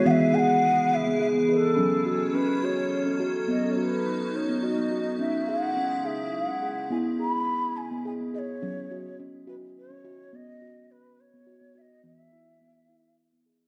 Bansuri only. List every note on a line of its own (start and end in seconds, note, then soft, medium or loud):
0.06 0.36 E5 medium
0.06 0.11 F#5 medium
0.34 0.40 G#5 medium
0.39 0.96 F#5 medium
0.94 1.20 E5 medium
1.21 1.27 E5 medium
1.51 1.57 B4 medium
1.56 2.36 A4 medium
2.34 2.66 B4 medium
2.64 3.22 C#5 medium
3.50 3.73 D#5 medium
3.71 3.79 C#5 soft
3.79 4.37 B4 medium
3.79 3.83 C#5 medium
4.36 4.65 C#5 medium
4.63 5.19 D#5 medium
5.20 5.49 E5 medium
5.48 6.07 F#5 medium
6.05 6.36 E5 medium
6.34 6.91 F#5 medium
6.91 6.98 G#5 medium
7.20 7.78 B5 medium
7.76 8.05 G#5 medium
8.06 8.12 G#5 medium
8.35 9.17 C#5 medium
8.35 8.39 D#5 medium
9.48 9.55 B4 medium
9.77 10.37 C#5 medium
10.35 10.92 D#5 medium
10.91 11.22 B4 medium
11.20 11.79 C#5 medium
11.78 12.05 D#5 medium
11.78 11.82 E5 medium
12.05 13.15 E5 medium